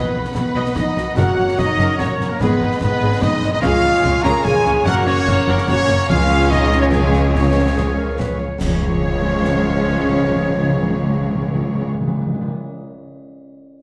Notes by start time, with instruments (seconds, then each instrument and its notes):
Already playing: trombone section D#3 B3, french horn section B3, trumpet B4, violin section B4 F#5 B5, flute B4, viola section D#5
0.14 double bass section B1, cello section B2, viola section B4
0.25 snare
0.34 double bass section B1, cello section B2, trombone section D#3 B3, french horn section B3, viola section F#4, trumpet B4, violin section B4, flute B4, concert bass drum, snare
0.55 double bass section B1, cello section B2, viola section D#5
0.66 snare
0.75 double bass section B1, cello section B2, trombone section D#3 B3, french horn section D#4, viola section B4, violin section D#5, trumpet D#5, flute D#5, concert bass drum, snare
0.96 double bass section B1, cello section B2, viola section F#4, snare
1.16 double bass section F#1, cello section F#2, trombone section C#3 A#3, french horn section F#4, viola section A#4 C#5, trumpet F#5, violin section F#5 A#5, flute F#5, concert bass drum, snare, crash
1.37 double bass section F#1, cello section F#2, viola section F#4
1.48 snare
1.58 double bass section F#1, cello section F#2, viola section C#4, french horn section D#4, violin section D#5, trumpet D#5, flute D#5, concert bass drum, snare
1.79 double bass section F#1, cello section F#2, viola section A#4, snare
1.97 double bass section F#1, cello section F#2, trombone section C#3 A#3, french horn section C#4, viola section F#4, trumpet C#5, flute C#5, violin section C#5, concert bass drum, snare
2.19 double bass section F#1, cello section F#2, viola section C#4, snare
2.29 french horn section A#3, trumpet A#4, violin section A#4, flute A#4
2.40 double bass section G#1, cello section G#2, trombone section D#3 G#3, french horn section B3, viola section G#4 B4, violin section B4 D#5 B5, trumpet B4, flute B4, concert bass drum, snare
2.61 double bass section G#1, cello section G#2, viola section D#4
2.71 snare
2.81 double bass section G#1, cello section G#2, trombone section D#3 G#3, french horn section B3, viola section B3, trumpet B4, violin section B4, flute B4, concert bass drum, snare
3.00 double bass section G#1, cello section G#2, viola section G#4
3.12 snare
3.20 double bass section G#1, cello section G#2, trombone section D#3 G#3, french horn section D#4, viola section D#4, trumpet D#5, violin section D#5, flute D#5, concert bass drum, snare
3.41 double bass section G#1, cello section G#2, viola section B3, snare
3.52 french horn section D#4, trumpet D#5, violin section D#5, flute D#5
3.61 double bass section C#2, cello section C#3, trombone section C#3 G#3, french horn section F4, viola section G#4 C#5, trumpet F5, violin section F5 G#5, flute F5, concert bass drum, snare, crash
3.83 double bass section C#2, cello section C#3, viola section F4
3.94 snare
4.03 double bass section C#2, cello section C#3, viola section C#4, concert bass drum, snare
4.23 double bass section C#2, cello section C#3, viola section G#4, french horn section A#4, trumpet A#5, violin section A#5, flute A#5, snare
4.44 double bass section C#2, cello section C#3, trombone section C#3 G#3, viola section F4, french horn section G#4, trumpet G#5, violin section G#5, flute G#5, concert bass drum, snare
4.65 double bass section C#2, cello section C#3, viola section C#4, snare
4.85 double bass section F#1, cello section F#2, trombone section C#3 A#3, french horn section F#4, viola section A#4, flute F#5, violin section F#5, trumpet F#5, concert bass drum, snare
5.06 double bass section F#1, cello section F#2, french horn section C#4, viola section F#4, trumpet C#5, violin section C#5, flute C#5
5.17 snare
5.27 double bass section F#1, cello section F#2, viola section C#4, concert bass drum, snare
5.47 double bass section F#1, cello section F#2, viola section A#4
5.58 snare
5.67 double bass section F#1, cello section F#2, trombone section C#3 A#3, french horn section C#4, viola section F#4, violin section C#5, trumpet C#5, flute C#5, concert bass drum, snare
5.89 double bass section F#1, cello section F#2, viola section C#4, snare
6.09 double bass section C#2, cello section C#2, trombone section C#3 G#3, timpani C#3, french horn section F4, viola section G#4 C#5, violin section F5 G#5, trumpet F5, flute F5, concert bass drum, snare, crash
6.41 snare
6.50 french horn section D#4, violin section D#5, trumpet D#5, flute D#5, concert bass drum, snare
6.72 snare
6.81 french horn section C#4, violin section C#5, trumpet C#5, flute C#5
6.91 trombone section C#3 G#3, french horn section G#3, flute G#4, violin section G#4 F5 G#5, trumpet G#4, viola section G#4 C#5, concert bass drum, snare
7.13 snare
7.34 timpani C#3, trombone section F3 G#3, french horn section C#4, viola section G#4 C#5, trumpet C#5, violin section C#5 F5 G#5, flute C#5, concert bass drum, snare
7.77 clarinet G#4, concert bass drum, snare
7.98 clarinet A#4
8.19 clarinet B4, concert bass drum, snare
8.40 clarinet C#5
8.60 double bass section C#2, cello section C#2, timpani C#3, trombone section F3 G#3, french horn section C#4, viola section G#4 C#5, trumpet C#5, violin section C#5 F5, flute C#5, concert bass drum, snare, crash
8.68 timpani C#3
8.75 timpani C#3
8.82 timpani C#3
8.88 timpani C#3
8.95 timpani C#3
9.01 timpani C#3
9.08 timpani C#3
9.15 timpani C#3
9.22 timpani C#3
9.28 timpani C#3
9.35 timpani C#3
9.42 timpani C#3, snare
9.48 timpani C#3
9.55 timpani C#3
9.62 timpani C#3
9.69 timpani C#3
9.75 timpani C#3
9.82 timpani C#3
9.89 timpani C#3
9.96 timpani C#3
10.03 timpani C#3
10.10 timpani C#3
10.16 timpani C#3
10.23 timpani C#3
10.30 timpani C#3
10.36 timpani C#3
10.43 timpani C#3
10.50 timpani C#3
10.57 timpani C#3
10.63 timpani C#3
10.69 timpani C#3
10.76 timpani C#3
10.83 timpani C#3
10.89 timpani C#3
10.96 timpani C#3
11.03 timpani C#3
11.09 timpani C#3
11.15 timpani C#3
11.22 timpani C#3
11.29 timpani C#3
11.35 timpani C#3
11.42 timpani C#3
11.48 timpani C#3
11.55 timpani C#3
11.61 timpani C#3
11.68 timpani C#3
11.75 timpani C#3
11.81 timpani C#3
11.88 timpani C#3
11.94 timpani C#3
12.01 timpani C#3
12.08 timpani C#3
12.15 timpani C#3
12.21 timpani C#3
12.27 timpani C#3
12.34 timpani C#3
12.41 timpani C#3
12.48 timpani C#3